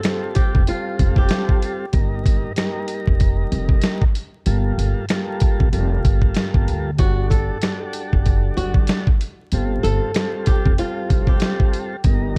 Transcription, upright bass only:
0, 0, Header, 1, 2, 480
1, 0, Start_track
1, 0, Tempo, 631579
1, 1474, Time_signature, 4, 2, 24, 8
1, 9410, End_track
2, 0, Start_track
2, 0, Title_t, "Upright bass"
2, 0, Program_c, 0, 32
2, 418, Note_on_c, 0, 29, 102
2, 493, Note_off_c, 0, 29, 0
2, 756, Note_on_c, 0, 29, 84
2, 937, Note_off_c, 0, 29, 0
2, 1472, Note_on_c, 0, 31, 100
2, 1836, Note_off_c, 0, 31, 0
2, 2337, Note_on_c, 0, 29, 91
2, 2594, Note_off_c, 0, 29, 0
2, 2675, Note_on_c, 0, 29, 97
2, 2856, Note_off_c, 0, 29, 0
2, 3393, Note_on_c, 0, 31, 107
2, 3575, Note_off_c, 0, 31, 0
2, 3632, Note_on_c, 0, 31, 89
2, 3737, Note_off_c, 0, 31, 0
2, 4259, Note_on_c, 0, 29, 91
2, 4334, Note_off_c, 0, 29, 0
2, 4353, Note_on_c, 0, 29, 92
2, 4535, Note_off_c, 0, 29, 0
2, 4597, Note_on_c, 0, 31, 96
2, 4778, Note_off_c, 0, 31, 0
2, 4973, Note_on_c, 0, 31, 89
2, 5050, Note_off_c, 0, 31, 0
2, 5073, Note_on_c, 0, 38, 92
2, 5313, Note_on_c, 0, 31, 99
2, 5325, Note_off_c, 0, 38, 0
2, 5677, Note_off_c, 0, 31, 0
2, 6179, Note_on_c, 0, 30, 88
2, 6436, Note_off_c, 0, 30, 0
2, 6516, Note_on_c, 0, 30, 88
2, 6697, Note_off_c, 0, 30, 0
2, 7237, Note_on_c, 0, 31, 93
2, 7418, Note_off_c, 0, 31, 0
2, 7477, Note_on_c, 0, 31, 99
2, 7580, Note_off_c, 0, 31, 0
2, 8100, Note_on_c, 0, 29, 101
2, 8174, Note_off_c, 0, 29, 0
2, 8438, Note_on_c, 0, 29, 82
2, 8618, Note_off_c, 0, 29, 0
2, 9155, Note_on_c, 0, 31, 103
2, 9410, Note_off_c, 0, 31, 0
2, 9410, End_track
0, 0, End_of_file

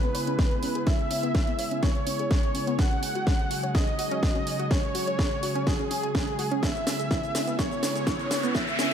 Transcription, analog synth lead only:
0, 0, Header, 1, 2, 480
1, 0, Start_track
1, 0, Key_signature, 4, "minor"
1, 0, Tempo, 480000
1, 868, Time_signature, 4, 2, 24, 8
1, 8935, End_track
2, 0, Start_track
2, 0, Title_t, "Analog synth lead"
2, 0, Program_c, 0, 81
2, 0, Note_on_c, 0, 71, 103
2, 868, Note_on_c, 0, 76, 127
2, 883, Note_off_c, 0, 71, 0
2, 1828, Note_on_c, 0, 73, 112
2, 1843, Note_off_c, 0, 76, 0
2, 2788, Note_on_c, 0, 78, 123
2, 2803, Note_off_c, 0, 73, 0
2, 3742, Note_off_c, 0, 78, 0
2, 3748, Note_on_c, 0, 75, 110
2, 4709, Note_on_c, 0, 73, 120
2, 4724, Note_off_c, 0, 75, 0
2, 5667, Note_on_c, 0, 68, 107
2, 5682, Note_off_c, 0, 73, 0
2, 6628, Note_on_c, 0, 76, 124
2, 6643, Note_off_c, 0, 68, 0
2, 7581, Note_off_c, 0, 76, 0
2, 7587, Note_on_c, 0, 73, 108
2, 8547, Note_on_c, 0, 76, 124
2, 8562, Note_off_c, 0, 73, 0
2, 8935, Note_off_c, 0, 76, 0
2, 8935, End_track
0, 0, End_of_file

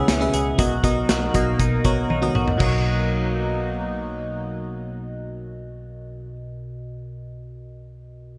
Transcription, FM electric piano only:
0, 0, Header, 1, 2, 480
1, 0, Start_track
1, 0, Key_signature, 5, "major"
1, 0, Tempo, 504202
1, 559, Time_signature, 4, 2, 24, 8
1, 7981, End_track
2, 0, Start_track
2, 0, Title_t, "FM electric piano"
2, 0, Program_c, 0, 5
2, 0, Control_c, 0, 64, 127
2, 0, Note_on_c, 0, 49, 63
2, 0, Note_on_c, 0, 61, 82
2, 0, Note_on_c, 0, 68, 76
2, 0, Note_on_c, 0, 70, 48
2, 0, Note_on_c, 0, 71, 73
2, 0, Note_on_c, 0, 73, 86
2, 0, Note_on_c, 0, 76, 97
2, 0, Note_on_c, 0, 78, 85
2, 194, Note_off_c, 0, 61, 0
2, 194, Note_on_c, 0, 61, 76
2, 199, Note_off_c, 0, 68, 0
2, 199, Note_on_c, 0, 68, 69
2, 202, Note_off_c, 0, 71, 0
2, 202, Note_on_c, 0, 71, 70
2, 206, Note_off_c, 0, 76, 0
2, 206, Note_on_c, 0, 76, 81
2, 429, Note_off_c, 0, 61, 0
2, 432, Note_off_c, 0, 68, 0
2, 433, Note_off_c, 0, 71, 0
2, 435, Note_off_c, 0, 76, 0
2, 551, Note_on_c, 0, 59, 77
2, 556, Note_on_c, 0, 47, 68
2, 556, Note_on_c, 0, 66, 69
2, 558, Note_off_c, 0, 70, 0
2, 558, Note_on_c, 0, 70, 70
2, 561, Note_on_c, 0, 75, 84
2, 570, Control_c, 0, 64, 0
2, 571, Note_off_c, 0, 73, 0
2, 574, Note_off_c, 0, 49, 0
2, 574, Note_off_c, 0, 78, 0
2, 710, Note_off_c, 0, 59, 0
2, 712, Note_off_c, 0, 66, 0
2, 714, Note_off_c, 0, 70, 0
2, 715, Note_off_c, 0, 75, 0
2, 756, Control_c, 0, 64, 127
2, 792, Note_on_c, 0, 59, 78
2, 796, Note_on_c, 0, 66, 73
2, 797, Note_on_c, 0, 70, 72
2, 802, Note_on_c, 0, 75, 84
2, 1106, Note_off_c, 0, 59, 0
2, 1108, Note_off_c, 0, 66, 0
2, 1109, Note_off_c, 0, 70, 0
2, 1111, Note_off_c, 0, 75, 0
2, 1239, Note_off_c, 0, 47, 0
2, 1275, Note_on_c, 0, 47, 77
2, 1277, Note_on_c, 0, 66, 69
2, 1283, Note_on_c, 0, 70, 69
2, 1287, Note_on_c, 0, 75, 85
2, 1587, Note_off_c, 0, 47, 0
2, 1589, Note_off_c, 0, 66, 0
2, 1591, Note_off_c, 0, 70, 0
2, 1593, Note_off_c, 0, 75, 0
2, 1753, Note_on_c, 0, 59, 76
2, 1758, Note_on_c, 0, 66, 68
2, 1761, Note_on_c, 0, 70, 71
2, 1762, Note_on_c, 0, 73, 82
2, 1989, Note_off_c, 0, 59, 0
2, 1991, Note_off_c, 0, 66, 0
2, 1993, Note_off_c, 0, 70, 0
2, 1993, Note_off_c, 0, 73, 0
2, 2111, Note_on_c, 0, 59, 69
2, 2111, Note_on_c, 0, 66, 66
2, 2117, Note_on_c, 0, 70, 62
2, 2118, Note_on_c, 0, 75, 78
2, 2348, Note_off_c, 0, 59, 0
2, 2348, Note_off_c, 0, 66, 0
2, 2351, Note_off_c, 0, 70, 0
2, 2352, Note_off_c, 0, 75, 0
2, 2450, Note_on_c, 0, 47, 69
2, 2467, Note_on_c, 0, 66, 59
2, 2473, Note_on_c, 0, 35, 66
2, 2483, Note_on_c, 0, 70, 61
2, 2493, Control_c, 0, 64, 0
2, 2495, Note_on_c, 0, 75, 71
2, 2643, Control_c, 0, 64, 127
2, 5929, Note_off_c, 0, 47, 0
2, 5946, Note_off_c, 0, 66, 0
2, 5953, Note_off_c, 0, 35, 0
2, 5962, Note_off_c, 0, 70, 0
2, 5975, Note_off_c, 0, 75, 0
2, 7981, End_track
0, 0, End_of_file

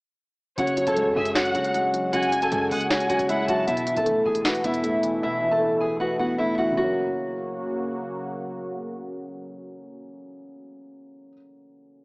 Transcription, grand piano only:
0, 0, Header, 1, 2, 480
1, 0, Start_track
1, 0, Tempo, 387097
1, 719, Time_signature, 4, 2, 24, 8
1, 14936, End_track
2, 0, Start_track
2, 0, Title_t, "Grand piano"
2, 0, Program_c, 0, 0
2, 719, Note_on_c, 0, 49, 101
2, 926, Control_c, 0, 64, 127
2, 962, Note_on_c, 0, 54, 92
2, 1198, Note_on_c, 0, 56, 92
2, 1681, Note_on_c, 0, 73, 100
2, 1919, Note_off_c, 0, 49, 0
2, 1919, Note_on_c, 0, 61, 86
2, 2142, Note_off_c, 0, 56, 0
2, 2160, Note_off_c, 0, 54, 0
2, 2161, Note_on_c, 0, 56, 91
2, 2398, Note_on_c, 0, 54, 77
2, 2639, Note_on_c, 0, 49, 93
2, 2859, Note_off_c, 0, 54, 0
2, 2878, Note_on_c, 0, 54, 72
2, 2880, Note_off_c, 0, 73, 0
2, 3100, Note_off_c, 0, 56, 0
2, 3118, Note_on_c, 0, 56, 91
2, 3119, Note_off_c, 0, 61, 0
2, 3594, Note_on_c, 0, 73, 95
2, 3838, Note_on_c, 0, 61, 88
2, 3839, Note_off_c, 0, 49, 0
2, 4060, Note_off_c, 0, 56, 0
2, 4078, Note_off_c, 0, 54, 0
2, 4078, Note_on_c, 0, 56, 92
2, 4320, Note_on_c, 0, 54, 85
2, 4557, Note_off_c, 0, 73, 0
2, 4558, Note_off_c, 0, 56, 0
2, 4558, Note_off_c, 0, 61, 0
2, 4558, Note_on_c, 0, 47, 97
2, 4559, Note_off_c, 0, 54, 0
2, 4574, Control_c, 0, 64, 0
2, 4797, Note_on_c, 0, 52, 87
2, 4818, Control_c, 0, 64, 127
2, 5039, Note_on_c, 0, 57, 93
2, 5518, Note_on_c, 0, 71, 92
2, 5758, Note_off_c, 0, 47, 0
2, 5758, Note_on_c, 0, 59, 91
2, 5979, Note_off_c, 0, 57, 0
2, 5997, Note_on_c, 0, 57, 90
2, 5998, Note_off_c, 0, 52, 0
2, 6240, Note_on_c, 0, 52, 89
2, 6478, Note_on_c, 0, 47, 98
2, 6698, Note_off_c, 0, 52, 0
2, 6717, Note_on_c, 0, 52, 81
2, 6718, Note_off_c, 0, 71, 0
2, 6941, Note_off_c, 0, 57, 0
2, 6958, Note_off_c, 0, 59, 0
2, 6959, Note_on_c, 0, 57, 89
2, 7437, Note_on_c, 0, 71, 94
2, 7678, Note_off_c, 0, 47, 0
2, 7679, Note_on_c, 0, 59, 91
2, 7902, Note_off_c, 0, 57, 0
2, 7918, Note_off_c, 0, 52, 0
2, 7920, Note_on_c, 0, 57, 88
2, 8161, Note_on_c, 0, 52, 80
2, 8325, Note_on_c, 0, 49, 85
2, 8374, Note_on_c, 0, 54, 78
2, 8398, Note_off_c, 0, 71, 0
2, 8399, Note_off_c, 0, 57, 0
2, 8399, Note_off_c, 0, 59, 0
2, 8400, Note_off_c, 0, 52, 0
2, 8412, Control_c, 0, 64, 0
2, 8424, Note_on_c, 0, 58, 77
2, 8474, Note_on_c, 0, 61, 94
2, 8606, Control_c, 0, 64, 127
2, 13996, Note_off_c, 0, 49, 0
2, 14037, Note_off_c, 0, 54, 0
2, 14062, Note_off_c, 0, 58, 0
2, 14087, Note_off_c, 0, 61, 0
2, 14936, End_track
0, 0, End_of_file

